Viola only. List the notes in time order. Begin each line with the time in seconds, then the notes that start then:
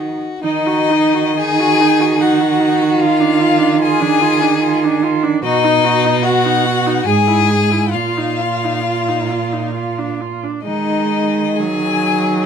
Already playing: D#4
0.43 D#4
0.67 F#4
0.90 D#4
1.14 F#4
1.36 D#4
1.60 F#4
1.80 D#4
2.00 F#4
2.21 D#4
2.41 F#4
2.60 D#4
2.82 F#4
2.99 F4
3.20 D4
3.40 F4
3.59 D4
3.80 F4
4.01 D4
4.21 F4
4.42 D4
4.62 F4
4.84 D4
5.03 F4
5.23 D4
5.44 F#4
5.64 D#4
5.84 F#4
6.05 D#4
6.24 F#4
6.45 D#4
6.65 F#4
6.86 D#4
7.07 G#4
7.28 E4
7.50 G#4
7.71 E4
7.94 F4
8.17 D#4
8.41 F4
8.64 D#4
8.86 F4
9.08 D#4
9.30 F4
9.53 D#4
9.75 F4
9.98 D4
10.21 F4
10.44 D4
10.67 G#3
11.60 F#3